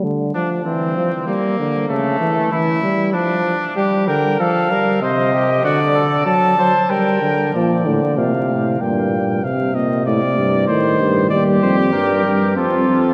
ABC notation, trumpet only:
X:1
M:3/4
L:1/8
Q:1/4=96
K:Gm
V:1 name="Trumpet"
z D C2 B,2 | A,2 =E2 D2 | G B A B c G | ^F A A c B2 |
z6 | z6 | [K:Cdor] G4 F2 |]